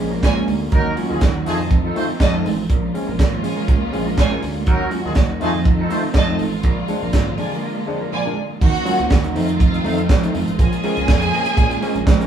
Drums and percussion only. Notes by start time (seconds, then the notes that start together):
0.23 kick, snare, clap, closed hi-hat, high conga
0.48 open hi-hat, high conga
0.72 kick, closed hi-hat
0.97 open hi-hat, muted conga
1.21 kick, snare, clap, closed hi-hat, high conga
1.46 open hi-hat
1.59 low conga
1.71 kick, closed hi-hat, muted conga
1.96 open hi-hat, muted conga
2.20 kick, snare, clap, closed hi-hat, high conga
2.45 open hi-hat, high conga
2.70 kick, closed hi-hat
2.95 open hi-hat, muted conga
3.19 kick, snare, clap, closed hi-hat, high conga
3.44 open hi-hat, low conga
3.68 kick, closed hi-hat, muted conga
3.93 open hi-hat, muted conga
4.18 kick, snare, clap, closed hi-hat, high conga
4.42 open hi-hat, high conga
4.67 kick, closed hi-hat
4.91 open hi-hat, muted conga
5.15 kick, snare, clap, closed hi-hat, high conga
5.41 open hi-hat
5.54 low conga
5.65 kick, closed hi-hat, muted conga
5.90 open hi-hat, muted conga
6.14 kick, snare, clap, closed hi-hat, high conga
6.39 open hi-hat, high conga
6.63 kick, closed hi-hat
6.88 open hi-hat, muted conga
7.13 kick, snare, clap, closed hi-hat, high conga
7.38 open hi-hat, low conga
8.61 kick, crash
8.75 closed hi-hat
8.86 open hi-hat, muted conga
8.99 closed hi-hat
9.11 kick, snare, clap, high conga
9.24 closed hi-hat
9.36 open hi-hat
9.49 closed hi-hat
9.60 kick, closed hi-hat, muted conga
9.74 closed hi-hat
9.84 open hi-hat, muted conga
9.98 closed hi-hat
10.09 kick, snare, clap, high conga
10.23 closed hi-hat
10.34 open hi-hat, high conga
10.47 closed hi-hat, high conga
10.59 kick, closed hi-hat
10.73 closed hi-hat
10.83 open hi-hat, muted conga
10.97 closed hi-hat
11.08 kick, snare, clap, high conga
11.22 closed hi-hat
11.33 open hi-hat
11.46 closed hi-hat
11.57 kick, closed hi-hat, muted conga
11.71 closed hi-hat
11.82 open hi-hat, muted conga
11.96 closed hi-hat
12.07 kick, snare, clap, high conga
12.21 closed hi-hat